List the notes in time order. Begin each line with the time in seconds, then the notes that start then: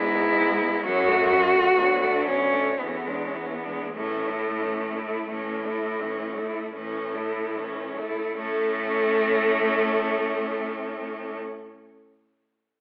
Already playing: G#2 G#3 B3 E4
0.15 G#3 B3
0.38 G#3 B3
0.62 G#3 B3
0.83 F#2 F#3 C#4 F#4
1.07 A3 F#4
1.31 F#3 C#4
1.54 A3 F#4
1.77 D2 F#3 B3
2.04 A3 D4
2.27 F#3 B3 C#4
2.51 A3 D4
2.79 E2 E3 B3
2.87 C#4
2.96 B3
3.06 G#3 C#4 D4
3.15 B3
3.26 C#4
3.35 E3 B3
3.46 C#4
3.55 B3
3.63 G#3 D4
3.93 A2 E3 A3 C#4
4.27 A3 E4
4.62 E3 C#4
4.96 A3 E4
5.29 A2 E3 C#4
5.66 A3 E4
6.01 E3 C#4
6.37 A3 E4
6.74 A2 E3 C#4
7.14 A3 E4
7.56 E3 C#4
7.97 A3 E4
8.36 A2 A3 C#4